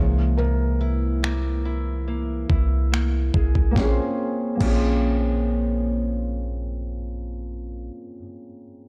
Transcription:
Already playing: C2 C3 E3 G#3 A#3 G#4
0.37 C3 A#4
0.81 E4
1.23 A#3, finger snap
1.65 E4
2.08 A#3
2.50 C2 E4, kick
2.92 A#3, finger snap
3.34 C2 G#4, kick
3.55 C2, kick
3.71 A#3 C4
3.76 A#1 C#4 F4, kick, snare
3.81 G#4
3.89 C5
4.55 A#3 C4
4.61 A#1 C#4 F4, kick, crash
4.65 G#4
4.73 C5

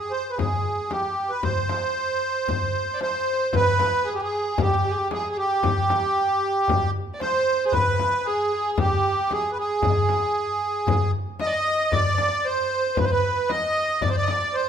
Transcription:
Already playing: G#4
0.11 C5
0.30 B4
0.37 G#4, darbuka dum, frame drum
0.51 darbuka ka
0.65 darbuka ka
0.89 G4, darbuka tek, frame drum
1.04 darbuka ka
1.30 B4
1.43 C5, frame drum, darbuka dum
1.57 darbuka ka
1.69 darbuka tek, frame drum
1.96 darbuka ka
2.48 darbuka dum, frame drum
2.61 darbuka ka
2.74 darbuka ka
2.94 D5
3.01 C5, darbuka tek, frame drum
3.13 darbuka ka
3.40 darbuka ka
3.53 B4, darbuka dum, frame drum
3.79 B4, darbuka tek, frame drum
3.92 darbuka ka
4.05 G#4, darbuka ka
4.15 G4
4.19 G#4
4.23 G#4
4.52 G#4
4.58 G4, frame drum, darbuka dum
4.71 darbuka ka
4.86 G4
4.91 G#4
4.98 G4
5.11 G#4, darbuka tek, frame drum
5.30 G#4
5.37 G4
5.63 darbuka dum, frame drum
5.89 darbuka tek, frame drum
6.02 darbuka ka
6.15 darbuka ka
6.68 darbuka dum, frame drum
6.81 darbuka ka
7.14 D5
7.20 C5, darbuka tek, frame drum
7.65 G#4 C5
7.72 B4, darbuka dum, frame drum
7.99 darbuka tek, frame drum
8.12 darbuka ka
8.26 G#4, darbuka ka
8.53 G#4
8.73 G#4
8.78 G4, frame drum, darbuka dum
8.91 darbuka ka
9.30 G#4, darbuka tek, frame drum
9.52 B4
9.59 G#4
9.82 darbuka dum, frame drum
10.09 darbuka tek, frame drum
10.22 darbuka ka
10.35 darbuka ka
10.87 darbuka dum, frame drum
11.01 darbuka ka
11.14 darbuka ka
11.40 D#5, darbuka tek, frame drum
11.47 D5
11.54 D#5
11.67 darbuka ka
11.79 darbuka ka
11.92 D5, frame drum, darbuka dum
12.01 D5
12.07 D5
12.15 D5, darbuka tek, frame drum
12.23 D5
12.30 D5, darbuka ka
12.44 C5, darbuka ka
12.71 C5
12.96 B4, darbuka dum, frame drum
13.04 C5
13.10 B4, darbuka ka
13.49 D#5, darbuka tek, frame drum
14.01 D5, darbuka dum, frame drum
14.09 C5
14.15 D5
14.23 D#5
14.28 D5, darbuka tek, frame drum
14.41 darbuka ka
14.54 C5, darbuka ka

